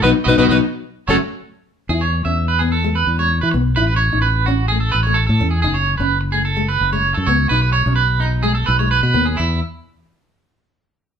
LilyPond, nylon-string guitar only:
\new Staff \with { instrumentName = "Nylon-string guitar" } { \time 4/4 \key e \major \tempo 4 = 128 <fis b dis'>16 r16 <fis b dis'>16 <fis b dis'>16 <fis b dis'>16 r4 <fis a cis'>16 r4. | e'8 r16 cis'8 r16 b8 gis8 r16 gis8 r16 b8 | e'8 r16 dis'8 r16 cis'8 a8 r16 a8 r16 cis'8 | dis'8 r16 cis'8 r16 a8 gis8 r16 gis8 r16 b8 |
dis'8 r16 cis'8 r8. gis8 r16 gis8 r16 b8 | e8 r2. r8 | }